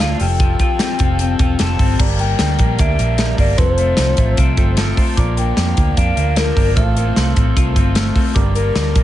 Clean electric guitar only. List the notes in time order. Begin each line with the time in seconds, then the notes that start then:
Already playing: A3 D4
0.01 F4
0.21 F3
0.41 F3
0.61 F4
0.81 C4
1.01 F4
1.21 C4
1.41 F4
1.60 A4
1.80 C4
2.00 G2
2.20 A#3
2.40 G3
2.60 A#3
2.80 D4
2.99 A#3
3.20 G3
3.39 A#3
3.59 F2
3.79 A3
3.98 F3
4.18 A3
4.38 C4
4.58 A3
4.78 F3
4.98 A3
5.18 A#2
5.38 A#3
5.58 F3
5.78 A#3
5.98 D4
6.18 A#3
6.38 F3
6.58 A#3
6.77 A2
6.98 A#3
7.07 C4
7.17 A3
7.37 C4
7.57 F4
7.76 C4
7.96 A3
8.16 C4
8.36 G2
8.56 A#3
8.76 G3
8.96 A#3